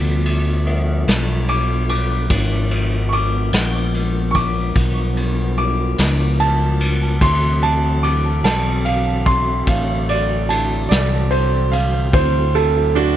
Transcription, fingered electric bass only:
0.00 1.04 D2 medium
1.08 2.27 B1 medium
2.30 3.49 G#1 medium
3.53 4.72 A#1 medium
4.76 5.95 B1 medium
5.99 7.18 C#2 medium
7.22 8.41 D2 medium
8.44 9.63 B1 medium
9.67 10.86 A1 loud
10.91 12.10 C2 medium
12.14 13.17 D2 medium

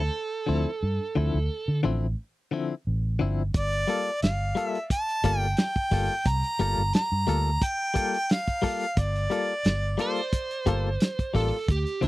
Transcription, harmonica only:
3.56 4.19 D5 medium
4.23 4.68 F5 medium
4.68 4.86 E5 medium
4.92 5.39 A5 loud
5.39 5.58 G5 loud
5.58 6.30 G5 medium
6.28 6.94 A#5 loud
6.95 7.65 A#5 loud
7.64 8.33 G5 loud
8.32 9.02 F5 medium
9.00 10.34 D5 medium

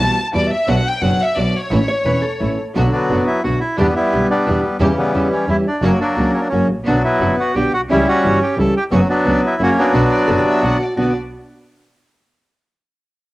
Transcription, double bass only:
0.00 0.14 B1 medium
0.33 0.48 E2 medium
0.68 0.82 B1 loud
1.02 1.17 F#1 medium
1.36 1.51 B1 medium
1.71 1.85 A1 loud
2.05 2.20 E1 medium
2.42 2.55 A1 medium
2.77 2.90 B1 loud
3.11 3.24 F#1 medium
3.46 3.59 B1 medium
3.79 3.93 E2 medium
4.13 4.27 B1 medium
4.47 4.61 E2 medium
4.80 4.94 E2 loud
5.14 5.28 E2 medium
5.47 5.62 E2 medium
5.82 5.97 F#1 medium
6.16 6.31 C#2 medium
6.53 6.67 F#1 medium
6.69 6.86 A1 medium
6.87 7.01 B1 medium
7.20 7.35 F#1 medium
7.56 7.70 B1 medium
7.73 7.89 B1 medium
7.89 8.04 C#2 loud
8.24 8.38 G1 medium
8.59 8.72 C#2 medium
8.91 9.06 F#1 loud
9.26 9.40 C#2 medium
9.60 9.74 F#1 medium
9.94 10.08 B1 loud
10.28 10.43 F#1 medium
10.62 10.77 B1 medium
10.97 11.12 B1 medium

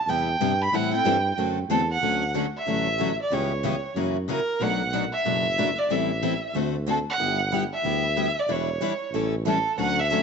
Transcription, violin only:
0.00 0.11 A5 loud
0.10 0.63 G5 medium
0.62 0.76 B5 loud
0.75 0.93 F#5 loud
0.94 1.35 G5 medium
1.71 1.88 A4 medium
1.91 2.32 F#5 loud
2.57 3.16 E5 loud
3.22 3.35 D5 medium
3.34 3.97 C#5 medium
4.30 4.64 A#4 medium
4.62 4.93 F#5 loud
5.13 5.80 E5 loud
5.78 5.93 D5 medium
5.91 6.55 E5 medium
6.90 6.98 A4 medium
7.10 7.50 F#5 loud
7.74 8.41 E5 loud
8.39 8.53 D5 medium
8.52 9.15 C#5 medium
9.48 9.77 A4 loud
9.80 10.01 F#5 loud
9.99 10.23 E5 loud

